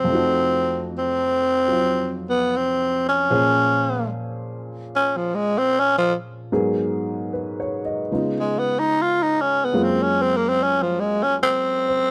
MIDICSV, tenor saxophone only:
0, 0, Header, 1, 2, 480
1, 0, Start_track
1, 0, Tempo, 803213
1, 54, Time_signature, 4, 2, 24, 8
1, 7236, End_track
2, 0, Start_track
2, 0, Title_t, "Tenor saxophone"
2, 0, Program_c, 0, 66
2, 0, Note_on_c, 0, 60, 80
2, 551, Note_off_c, 0, 60, 0
2, 586, Note_on_c, 0, 60, 83
2, 1337, Note_off_c, 0, 60, 0
2, 1370, Note_on_c, 0, 59, 79
2, 1534, Note_on_c, 0, 60, 72
2, 1543, Note_off_c, 0, 59, 0
2, 1833, Note_off_c, 0, 60, 0
2, 1845, Note_on_c, 0, 61, 84
2, 2443, Note_off_c, 0, 61, 0
2, 2962, Note_on_c, 0, 61, 85
2, 3088, Note_on_c, 0, 53, 64
2, 3097, Note_off_c, 0, 61, 0
2, 3196, Note_on_c, 0, 56, 81
2, 3205, Note_off_c, 0, 53, 0
2, 3336, Note_on_c, 0, 60, 89
2, 3345, Note_off_c, 0, 56, 0
2, 3464, Note_on_c, 0, 61, 101
2, 3473, Note_off_c, 0, 60, 0
2, 3570, Note_off_c, 0, 61, 0
2, 3573, Note_on_c, 0, 53, 85
2, 3666, Note_off_c, 0, 53, 0
2, 5019, Note_on_c, 0, 56, 76
2, 5132, Note_on_c, 0, 59, 76
2, 5141, Note_off_c, 0, 56, 0
2, 5254, Note_on_c, 0, 63, 84
2, 5263, Note_off_c, 0, 59, 0
2, 5389, Note_on_c, 0, 65, 88
2, 5398, Note_off_c, 0, 63, 0
2, 5511, Note_on_c, 0, 63, 83
2, 5520, Note_off_c, 0, 65, 0
2, 5624, Note_on_c, 0, 61, 83
2, 5633, Note_off_c, 0, 63, 0
2, 5766, Note_on_c, 0, 59, 71
2, 5775, Note_off_c, 0, 61, 0
2, 5876, Note_on_c, 0, 60, 71
2, 5885, Note_off_c, 0, 59, 0
2, 5993, Note_on_c, 0, 61, 80
2, 6002, Note_off_c, 0, 60, 0
2, 6107, Note_on_c, 0, 60, 82
2, 6116, Note_off_c, 0, 61, 0
2, 6195, Note_on_c, 0, 58, 73
2, 6204, Note_off_c, 0, 60, 0
2, 6267, Note_on_c, 0, 60, 80
2, 6276, Note_off_c, 0, 58, 0
2, 6352, Note_on_c, 0, 61, 86
2, 6361, Note_off_c, 0, 60, 0
2, 6468, Note_on_c, 0, 53, 69
2, 6477, Note_off_c, 0, 61, 0
2, 6572, Note_on_c, 0, 56, 72
2, 6581, Note_off_c, 0, 53, 0
2, 6713, Note_on_c, 0, 61, 80
2, 6722, Note_off_c, 0, 56, 0
2, 6786, Note_off_c, 0, 61, 0
2, 6828, Note_on_c, 0, 60, 89
2, 7236, Note_off_c, 0, 60, 0
2, 7236, End_track
0, 0, End_of_file